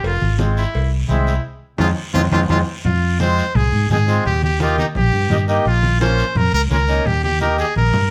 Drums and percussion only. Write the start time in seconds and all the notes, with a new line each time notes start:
0.04 cowbell, long guiro
0.22 high conga
0.39 high conga, short guiro
0.57 short guiro
0.74 cowbell, high conga, long guiro
1.09 high conga, short guiro
1.26 high conga, short guiro
1.78 high conga, high timbale, long guiro
2.14 high conga, high timbale, long guiro
2.31 high conga, high timbale, long guiro
2.49 high conga, high timbale, long guiro
2.85 high conga, low conga, long guiro
3.20 high conga, short guiro
3.38 short guiro
3.55 low conga, long guiro
3.74 high conga
3.90 high conga, low conga, short guiro
4.08 short guiro
4.25 high conga, low conga, long guiro
4.43 high conga
4.60 high conga, short guiro
4.78 high conga, short guiro
4.95 low conga, long guiro
5.13 high conga
5.30 high conga, low conga, short guiro
5.48 short guiro
5.65 high conga, long guiro
5.83 high conga
6.01 high conga, short guiro
6.18 short guiro
6.35 low conga, long guiro
6.53 high conga
6.71 high conga, short guiro
6.88 short guiro
7.05 high conga, low conga, long guiro
7.24 high conga
7.40 high conga, short guiro
7.58 short guiro
7.76 high conga, long guiro
7.94 low conga